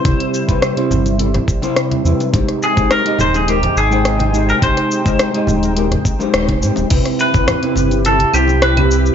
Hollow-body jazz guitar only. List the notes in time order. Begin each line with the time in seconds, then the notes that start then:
0.04 C3 C4 E4 C5
0.47 C3 C4 E4 B4
0.76 C3 C4 E4 C5
1.18 C3 C4 E4 A4
1.62 C3 C4 E4 C5
2.04 C3 C4 E4 B4
2.32 G#3 D#4 G4 C5
2.76 G#3 D#4 G4 C5
3.05 G#3 D#4 G4 D#5
3.47 G#3 D#4 G4 A#4
3.90 G#3 D#4 C5 G5
4.33 G#3 D#4 G4 C5
4.61 G#3 D#4 G4 C5
5.05 G#3 D#4 G4 C5
5.33 G#3 D#4 G4 D#5
5.76 G#3 D#4 G4 A#4
6.19 G#3 D#4 G4 C5
6.61 G#3 D#4 G4 C5
6.90 C3 C4 E4 B4
7.33 C3 C4 E4 B4
7.62 C3 C4 E4 B4
8.05 C3 C4 E4 A4
8.33 C3 C4 E4 C5
8.76 C3 C4 E4 B4